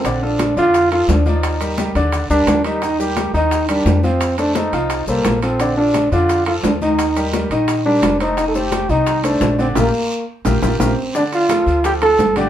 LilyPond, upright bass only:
\new Staff \with { instrumentName = "Upright bass" } { \clef bass \time 4/4 \key bes \major \tempo 4 = 173 bes,,4. f,4. ees,4~ | ees,4. ees,4 d,8 ees,4~ | ees,4. ees,4. f,4~ | f,4. c,4 c,8 bes,,4~ |
bes,,4. f,4. ees,4~ | ees,4. bes,,4. f,,4~ | f,,4. c,4. bes,,4 | bes,,8 r4. bes,,8 bes,,8 bes,,8 r8 |
r4. d,4. g,,4 | }